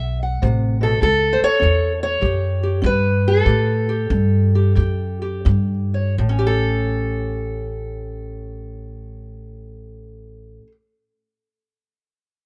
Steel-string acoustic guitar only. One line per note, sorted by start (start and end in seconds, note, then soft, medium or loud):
0.00 0.37 A2 medium
0.00 0.22 E5 medium
0.23 0.81 F#5 soft
0.42 0.80 C3 medium
0.81 1.00 B2 medium
0.81 1.02 A4 medium
1.01 1.56 A2 medium
1.01 1.92 A4 loud
1.33 1.41 C5 medium
1.44 2.02 C#5 loud
1.60 2.16 C#4 medium
2.03 2.83 C#5 loud
2.21 2.78 A2 medium
2.21 2.63 G4 soft
2.63 3.45 G4 soft
2.82 3.40 C#4 medium
2.86 3.89 B4 loud
3.28 6.18 A4 medium
3.45 4.05 A2 medium
3.45 3.88 G4 medium
3.89 4.54 G4 soft
4.10 4.72 C#4 medium
4.55 4.75 G4 soft
4.75 5.40 A2 medium
4.75 5.21 G4 soft
5.22 6.14 G4 soft
5.45 6.12 C#4 medium
5.94 6.15 C#5 soft
6.19 10.62 A2 medium
6.29 10.67 C#4 medium
6.39 10.72 G4 medium
6.47 10.71 A4 medium